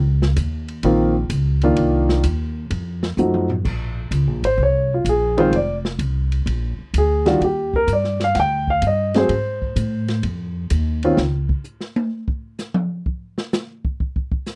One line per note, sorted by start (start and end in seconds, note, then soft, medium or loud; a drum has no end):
0.00 0.35 C#2 medium
0.22 snare medium
0.36 0.82 D#2 medium
0.36 hi-hat pedal medium
0.36 ride medium
0.68 ride soft
0.83 1.29 A#1 medium
0.83 1.13 D#3 medium
0.83 1.13 A#3 medium
0.83 1.13 C4 medium
0.83 1.14 F4 medium
0.83 ride medium
1.30 1.76 C#2 medium
1.30 hi-hat pedal medium
1.30 ride medium
1.62 2.22 D#3 medium
1.62 2.22 A#3 medium
1.62 2.22 D4 medium
1.62 2.23 F4 medium
1.62 ride soft
1.76 2.23 C2 medium
1.76 ride medium
2.09 snare medium
2.24 2.70 D#2 medium
2.24 hi-hat pedal medium
2.24 ride medium
2.71 3.17 F2 medium
2.71 ride medium
3.03 snare medium
3.17 3.63 F#2 medium
3.17 3.48 F3 medium
3.17 3.48 A3 soft
3.17 3.48 D#4 soft
3.17 3.48 F#4 medium
3.17 hi-hat pedal medium
3.34 mid tom medium
3.50 floor tom medium
3.65 4.10 A#1 medium
3.65 kick medium
3.65 crash medium
4.11 4.27 C#2 medium
4.11 hi-hat pedal soft
4.11 ride medium
4.27 4.42 A#1 medium
4.42 4.57 G#1 medium
4.42 4.59 C5 medium
4.42 ride medium
4.58 5.04 C2 medium
4.63 4.92 C#5 medium
4.94 5.07 F4 medium
5.05 5.51 A#1 medium
5.05 hi-hat pedal medium
5.05 ride medium
5.09 5.39 G#4 medium
5.38 5.51 D#3 medium
5.38 5.52 G#3 medium
5.38 5.52 C4 medium
5.38 5.52 F4 medium
5.38 5.54 C5 medium
5.38 ride soft
5.51 5.98 F1 medium
5.51 ride medium
5.56 5.74 D5 medium
5.85 snare medium
5.99 6.45 C2 medium
5.99 hi-hat pedal medium
5.99 ride medium
6.32 ride soft
6.46 6.77 A#1 medium
6.46 ride medium
6.79 muted upright bass stroke soft
6.94 7.40 D2 medium
6.94 hi-hat pedal medium
6.94 ride medium
6.98 7.28 G#4 medium
7.26 7.40 D#3 medium
7.26 7.40 G3 medium
7.26 7.40 D4 medium
7.26 7.40 F4 medium
7.26 7.42 F#4 medium
7.26 snare medium
7.26 ride soft
7.40 7.87 D#2 medium
7.40 7.74 G4 medium
7.40 ride medium
7.73 7.89 A#4 medium
7.73 kick medium
7.87 8.34 G2 medium
7.87 hi-hat pedal medium
7.87 ride medium
7.93 8.22 D5 medium
8.04 snare soft
8.20 snare soft
8.20 ride soft
8.24 8.37 F5 medium
8.35 8.81 D2 medium
8.35 8.38 F#5 medium
8.35 snare soft
8.35 ride medium
8.40 8.69 G5 medium
8.68 8.84 F5 medium
8.68 kick medium
8.82 9.28 G2 medium
8.82 hi-hat pedal soft
8.82 ride medium
8.87 9.16 D#5 medium
9.14 9.29 F#3 medium
9.14 9.29 A3 medium
9.14 9.29 C4 medium
9.14 9.29 G#4 medium
9.14 10.21 C5 medium
9.14 snare soft
9.14 ride soft
9.29 9.75 G#2 medium
9.29 ride medium
9.62 kick soft
9.76 10.22 A2 medium
9.76 hi-hat pedal medium
9.76 ride medium
10.08 snare soft
10.08 ride soft
10.23 10.69 F2 medium
10.23 ride medium
10.70 11.17 D#2 medium
10.70 hi-hat pedal medium
10.70 ride medium
11.03 11.17 D#3 medium
11.03 11.17 C4 medium
11.03 11.17 C#4 medium
11.03 11.18 F4 medium
11.03 ride soft
11.17 11.49 C#2 medium
11.17 snare medium
11.49 kick medium
11.64 hi-hat pedal medium
11.81 snare soft
11.96 high tom medium
12.28 kick medium
12.59 snare soft
12.59 hi-hat pedal medium
12.74 mid tom medium
13.06 kick medium
13.38 snare soft
13.53 snare medium
13.53 hi-hat pedal medium
13.85 kick medium
14.00 kick medium
14.16 kick medium
14.32 kick medium
14.46 snare soft
14.46 hi-hat pedal medium